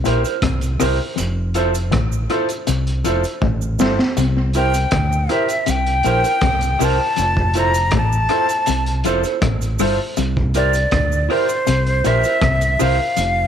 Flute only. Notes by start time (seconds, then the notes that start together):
4.57 G5
5.32 E5
5.70 G5
6.84 A5
7.59 A#5
7.97 A5
10.56 D5
11.31 C5
12.07 E5
12.81 F5